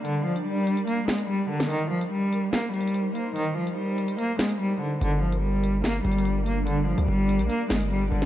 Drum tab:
HH |x--------x--------x--x--x--------x--------------|x--------x--------x-----x-----x-x-x-x-----x-----|x--------x--------x--x--x--------x--------------|x--------x--------x-----x-----x-x-x-x-----x-----|
SD |------------------------------o--------------o--|------------------------o-----------------------|------------------------------o-----------------|------------------------o-----------------------|

HH |x--------x--------x--x--x--------x--------------|
SD |------------------------------o--------------o--|